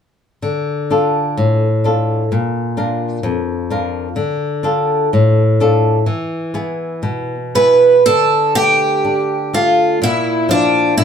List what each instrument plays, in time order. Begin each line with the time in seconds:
0.42 nylon-string guitar D3
0.90 nylon-string guitar D4 F4 A4
1.37 nylon-string guitar A2
1.84 nylon-string guitar D4 F4 A4
2.32 nylon-string guitar A#2
2.77 nylon-string guitar D4 F4 A#4
3.23 nylon-string guitar F2
3.70 nylon-string guitar D4 F4 A#4
4.16 nylon-string guitar D3
4.63 nylon-string guitar D4 F4 A4
5.13 nylon-string guitar A2
5.60 nylon-string guitar D4 F4 A4
6.06 nylon-string guitar E3
6.54 nylon-string guitar B3 E4 G#4
7.03 nylon-string guitar B2
7.55 nylon-string guitar B3 E4 G#4, twelve-string acoustic guitar B4
8.06 nylon-string guitar D3, twelve-string acoustic guitar A4
8.55 nylon-string guitar A3, twelve-string acoustic guitar G4
9.05 nylon-string guitar D4
9.53 nylon-string guitar A3, twelve-string acoustic guitar F4
10.02 nylon-string guitar A#2, twelve-string acoustic guitar E4
10.49 nylon-string guitar F3, twelve-string acoustic guitar D4
10.97 nylon-string guitar A#2, twelve-string acoustic guitar F4